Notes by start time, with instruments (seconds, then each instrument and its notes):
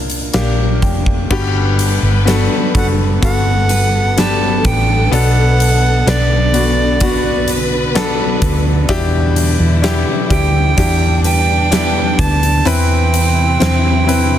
Already playing: fingered electric bass C2, steel-string acoustic guitar A#2 A#3 D4 A#4, grand piano A#3 D4 E4 F4
0.10 closed hi-hat
0.33 fingered electric bass A#1, grand piano A#3 D4 G4 F5, steel-string acoustic guitar A#3 D4 A#4, snare, closed hi-hat
0.82 fingered electric bass F1, grand piano G5, kick, closed hi-hat
1.06 kick
1.30 fingered electric bass G1, grand piano G2 D3 B3 F#4 G4, string section G3 B3 B4, steel-string acoustic guitar B4, kick, crash
1.79 closed hi-hat
2.02 fingered electric bass G1
2.25 grand piano B3 F#4 A4, steel-string acoustic guitar D4, snare, closed hi-hat
2.74 fingered electric bass F#1, grand piano B3 F#4 A4, recorder F#5, kick, closed hi-hat
3.21 fingered electric bass G1, grand piano B3 F#4 A4, steel-string acoustic guitar F#4, string section A4, recorder F#5, kick, closed hi-hat
3.69 steel-string acoustic guitar B4, closed hi-hat
4.17 grand piano B3 D4 G4, steel-string acoustic guitar D4 B4, recorder A5, snare, closed hi-hat
4.65 fingered electric bass A1, recorder G5, kick, closed hi-hat
5.11 fingered electric bass B1, grand piano B2 F#3 B3 D4 A4, steel-string acoustic guitar B2 B4, string section D3, recorder F#5, closed hi-hat
5.60 closed hi-hat
6.06 fingered electric bass B1, grand piano B3 D4 B4, steel-string acoustic guitar D4, recorder D5, snare, closed hi-hat
6.53 grand piano B3 D4 F#4, closed hi-hat
7.00 grand piano B3 D4 F#4, steel-string acoustic guitar F#4, string section B4, kick, closed hi-hat
7.48 steel-string acoustic guitar B4, closed hi-hat
7.95 grand piano B3 D4 A4, steel-string acoustic guitar D4 F#4 B4, snare, closed hi-hat
8.42 fingered electric bass D2, kick, closed hi-hat
8.89 fingered electric bass E2, grand piano B2 D4 E4 G4, steel-string acoustic guitar E3 B4, string section G3 E4, kick, closed hi-hat
9.36 closed hi-hat
9.60 fingered electric bass E2
9.82 steel-string acoustic guitar B3, grand piano D4 E4 G4, snare, closed hi-hat
10.30 fingered electric bass D2, grand piano D4 E4 G4, recorder G5, kick, closed hi-hat
10.77 fingered electric bass E2, grand piano D4 E4 G4, steel-string acoustic guitar D4, string section D4, kick, closed hi-hat
11.24 steel-string acoustic guitar B4, recorder G5, closed hi-hat
11.71 steel-string acoustic guitar B3 D4 B4, grand piano D4 E4 G4, snare, closed hi-hat
12.19 fingered electric bass D2, recorder A5, kick, closed hi-hat
12.43 closed hi-hat
12.65 fingered electric bass E2, string section C3 C4 E4, steel-string acoustic guitar E3 B4, grand piano E3 C4 E4 B4, recorder G5, closed hi-hat
13.14 closed hi-hat
13.60 fingered electric bass E2, grand piano C4 E4 C5, steel-string acoustic guitar C4, snare, closed hi-hat
14.07 grand piano C4 E4 B4, closed hi-hat